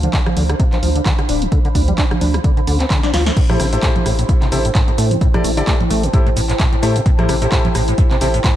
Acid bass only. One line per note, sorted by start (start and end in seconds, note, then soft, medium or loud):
0.03 0.09 D3 medium
0.13 0.21 D3 medium
0.26 0.30 D3 medium
0.37 0.44 D3 medium
0.49 0.55 D3 medium
0.60 0.64 C3 loud
0.73 0.78 F3 medium
0.83 0.90 F3 medium
0.96 1.01 D3 medium
1.06 1.13 D3 loud
1.19 1.22 D3 medium
1.29 1.43 D4 medium
1.42 1.47 D3 medium
1.52 1.59 D3 medium
1.65 1.68 D3 loud
1.75 1.82 D4 medium
1.88 1.94 G3 medium
1.98 2.05 D4 medium
2.11 2.14 D3 medium
2.21 2.36 D4 medium
2.34 2.40 D3 medium
2.44 2.51 D3 medium
2.57 2.61 D3 loud
2.67 2.78 D3 loud
2.80 2.86 C4 medium
2.90 3.01 D3 loud
3.03 3.12 D4 loud
3.14 3.24 F4 medium
3.27 3.32 A3 medium
3.37 3.41 A2 loud
3.50 3.58 A2 medium
3.60 3.67 C3 medium
3.73 3.78 A2 medium
3.83 3.90 A2 medium
3.96 3.99 A2 medium
4.06 4.13 A2 medium
4.19 4.24 A2 medium
4.29 4.33 G2 loud
4.42 4.47 C3 medium
4.52 4.59 C3 medium
4.65 4.71 A2 medium
4.75 4.82 A2 loud
4.88 4.91 A2 medium
4.98 5.12 A3 medium
5.11 5.17 A2 medium
5.21 5.28 A2 medium
5.34 5.37 A2 loud
5.44 5.51 A3 medium
5.57 5.63 D3 medium
5.67 5.74 A3 medium
5.80 5.84 A2 medium
5.90 6.05 A3 medium
6.03 6.09 A2 medium
6.13 6.21 A2 medium
6.26 6.30 A2 loud
6.36 6.41 A2 loud
6.49 6.53 A2 medium
6.60 6.67 A2 medium
6.72 6.76 A2 medium
6.83 6.97 A3 medium
6.96 7.01 A2 medium
7.06 7.10 A2 loud
7.19 7.27 A2 medium
7.29 7.36 C3 medium
7.42 7.47 A2 medium
7.52 7.59 A2 medium
7.65 7.68 A2 medium
7.75 7.82 A2 medium
7.88 7.94 A2 medium
7.98 8.02 G2 loud
8.11 8.17 C3 medium
8.21 8.28 C3 medium
8.34 8.40 A2 medium
8.44 8.51 A2 loud